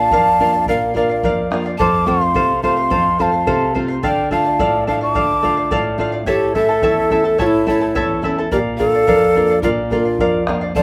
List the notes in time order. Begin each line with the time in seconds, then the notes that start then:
Already playing: A#3 D4 F4 F5
0.00 D5 F5 A5
0.11 F2 A#4 D5 F5, bombo low
0.39 A#3 D4 F4 A#4 D5 F5, bombo low
0.53 D5 F5
0.66 A#2 A#4 D5 F5, bombo low
0.94 A#3 D4 F4 A#4 D5 F5, bombo low
1.09 D5 F5
1.23 F2 A#4 D5 F5, bombo low
1.51 A#3 D4 F4 A#4 D5 F5, bombo rim
1.66 D5 F5
1.78 F2 A4 C5 F5 A5 D6, bombo low
2.06 A3 C4 F4 A4 C5 F5 C6, bombo low
2.21 C5 F5
2.34 C3 A4 C5 F5, bombo low
2.63 A3 C4 F4 A4 C5 F5 C6, bombo low
2.77 C5 F5
2.90 F2 A4 C5 F5, bombo low
3.19 A3 C4 F4 A4 C5 F5 A5, bombo low
3.32 C5 F5
3.47 C3 A4 C5 F5, bombo low
3.75 A3 C4 F4 A4 C5 F5, bombo low
3.88 C5 F5
4.03 D3 A4 D5 F5 G5, bombo low
4.31 A3 D4 F4 A4 D5 F5 A5, bombo low
4.45 D5 F5
4.59 A2 A4 D5 F5, bombo low
4.87 A3 D4 F4 A4 D5 F5 A5, bombo low
5.01 D5 F5 A5 C#6
5.14 D3 A4 D5 F5 D6, bombo low
5.42 A3 D4 F4 A4 D5 F5, bombo low
5.57 D5 F5
5.71 A2 A4 D5 F5, bombo low
5.98 A3 D4 F4 A4 D5 F5, bombo low
6.12 D5 F5
6.26 A2 E4 G4 A4 C#5 E5 A5, bombo low
6.54 A3 C#4 E4 A4 E5 A5, bombo low
6.69 E4 A4 A5
6.82 E2 E4 A4 C#5 E5 A5, bombo low
7.10 A3 C#4 E4 A4 E5 A5, bombo low
7.24 E4 A4 A5
7.38 A2 E4 F4 A4 C#5 E5 A5, bombo low
7.47 E4
7.66 A3 C#4 E4 A4 C#5 E5 A5, bombo low
7.81 E4 A4 A5
7.95 E2 E4 A4 C#5 E5 A5, bombo low
8.22 A3 C#4 E4 A4 E5 A5, bombo low
8.38 E4 A4 A5
8.52 A#2 G4 A#4 D5 F5, bombo low
8.77 A#3 D4 F4 A4 A#4 D5 F5, bombo low
8.94 D5 F5
9.07 F2 A#4 D5 F5, bombo low
9.35 A#3 D4 F4 A#4 D5 F5, bombo low
9.50 D5 F5
9.62 A#2 F4 A#4 D5 F5, bombo low
9.90 A#3 D4 F4 G4 A#4 D5 F5, bombo low
9.95 F4
10.05 D5 F5
10.19 F2 A#4 D5 F5, bombo low
10.47 A#3 D4 F4 A#4 D5 F5, bombo rim, bombo low
10.61 D5 F5
10.75 F2 A4 C5 D5 F5 A5, bombo low